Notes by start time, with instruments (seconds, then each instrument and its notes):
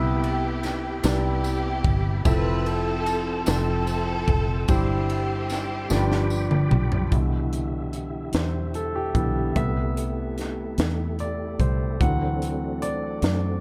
Already playing: fingered electric bass C2, upright piano C3 B3 E4 G4 B4 E5, string section B3 E4 G4, tonewheel organ G4 E5 G5 B5
0.24 ride
0.63 snare, ride, tambourine
1.03 fingered electric bass C2, upright piano C3 E4 G4 B4 D5, string section B3 E4, snare, ride, tambourine
1.07 string section G4
1.44 ride, tambourine
1.84 fingered electric bass G1, kick, ride
2.25 fingered electric bass F1, upright piano F3 C4 E4 A4 E5, string section E4 B4, tonewheel organ A4 E5 E6, kick, ride, tambourine
2.66 string section C4 E4 A4, ride
3.06 ride, tambourine
3.46 fingered electric bass F1, upright piano F3 C4 A4 E5 A5, string section C4 E4, snare, ride, tambourine
3.50 string section A4
3.87 ride, tambourine
4.28 fingered electric bass F1, kick, ride
4.68 fingered electric bass G1, upright piano G2 E4 G4 C5, string section C4 E4, tonewheel organ G4 E5 C6, kick, ride, tambourine
4.72 string section G4
5.10 ride
5.50 snare, ride, tambourine
5.90 fingered electric bass G1, upright piano G2 F3 A3 D4 G4 D5, tonewheel organ G5 B5 D6, snare, tambourine
5.96 upright piano B4
6.12 snare
6.30 tambourine
6.51 mid tom
6.71 fingered electric bass B1, mid tom
6.92 floor tom
7.11 fingered electric bass C2, upright piano B2 D3 E3, tonewheel organ G3 E4 G4 E5, kick, closed hi-hat
7.53 closed hi-hat
7.93 closed hi-hat
8.33 fingered electric bass E2, upright piano C5, snare, closed hi-hat
8.74 upright piano A4, closed hi-hat
8.96 upright piano G4
9.14 fingered electric bass B1, upright piano D3 E3 B3 A4, kick, closed hi-hat
9.55 fingered electric bass C2, upright piano C3 G3 B3 E5, tonewheel organ A3 A4, kick, closed hi-hat
9.97 closed hi-hat
10.38 snare, closed hi-hat
10.78 fingered electric bass E2, snare, closed hi-hat
11.19 upright piano D5, closed hi-hat
11.60 fingered electric bass C2, upright piano C5, kick, closed hi-hat
11.99 fingered electric bass D2, upright piano E3 F#3 C4 F#5, tonewheel organ C4 D4 F#4, kick, closed hi-hat
12.42 closed hi-hat
12.82 upright piano D5, closed hi-hat
13.22 fingered electric bass F#2, snare, closed hi-hat